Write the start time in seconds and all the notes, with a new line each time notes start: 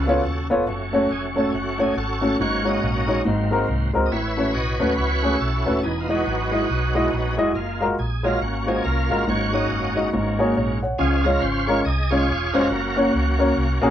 Already playing: C#2 C#3 F3 A3 B3 C#4 F#4 A4
0.07 B3 F4 A4 C#5
0.25 D#2
0.50 F1 B3 F4 A4 C#5
0.67 F#1 F#3 A3 C#4
0.93 A3 C#4 F#4 C#5
1.10 F1 G#4
1.36 A3 C#4 F#4 A4 C#5
1.50 F#1 G#4
1.54 A3 C#4 F#4
1.78 F#3 A3 C#4 F#4 G#4 C#5
1.91 G#4
1.96 G#1 C#4 F#4 A4
2.21 A3 C#4 F#4 A4
2.39 G#1 G#2 F#3 A#3 C#4 F#4 C#5
2.64 G#3 D#4 F#4 C#5 D#5
2.82 A#1
3.07 G#3 D#4 F#4 C#5
3.25 G#1 G#2 F#3 A#3 C4
3.51 G#3 C4 F#4 A#4
3.68 C2
3.94 C#2 G#3 C4 F#4 A#4
4.06 D#5
4.11 A1 A2 B4 C#5 E5
4.37 A3 C#4 F#4 B4
4.54 B1 F#4 B4 D#5
4.79 D#2 F#3 A3 B3 C#4 F#4 B4
4.97 C#2 E4 F#4 C#5
5.22 A3 C#4 F#4 G#4
5.40 B1 C#4 F#4 A4
5.66 D#1 A3 C#4 F#4 B4
5.83 E1 E3 B3 D#4 G#4
6.01 F4
6.08 F#3 G#3 B3 D#4 E4 F#4 D#5
6.26 G#1
6.51 G#3 E4 F#4 D#5
6.69 B1
6.95 G#3 E4 F#4 D#5
7.12 A#1
7.37 F1 G#3 E4 F#4 D#5
7.54 F#1 G#3 A#3 F4
7.81 G#3 F4 F#4 A#4
7.99 A#1 G#4
8.23 G#3 A#3 F4 F#4 A#4 C#5
8.41 G#1 A#3 C#4 F#4
8.67 G#3 F4 F#4 G#4 C5
8.84 C2 C#4 F4 A#4
9.10 G1 G#3 F4 F#4 A#4
9.27 G#1 G#2 F#3 A#3 C#4 F#4 C#5
9.53 G#3 D#4 F#4 C#5 D#5
9.70 F#1
9.96 G#3 D#4 F#4 D#5
10.12 G#1 G#2 F#3 A#3 C#4
10.39 A#3 F#4 G#4 C#5
10.56 A#1 G#4 C#5
10.83 C#5 F#5
10.98 C#2 C#3 F3 G#3 C#4 F4 G#4
11.24 G#3 C#4 F4 A#4 C#5
11.41 G#1 C5
11.67 G#3 C#4 F4 A#4 C#5
11.85 C2 G#4 D#5
12.10 G#3 C#4 F4 G#4 C#5
12.28 E1
12.54 F1 G#3 C#4 F4 F#4 A#4 C5
12.70 F#1 F#3 A#3 C#4
12.96 A#3 C#4 F#4 C#5
13.14 C#2
13.39 A#3 C#4 F#4 C#5
13.56 C2
13.82 A#1 F#3 A#3 C#4 F#4 G#4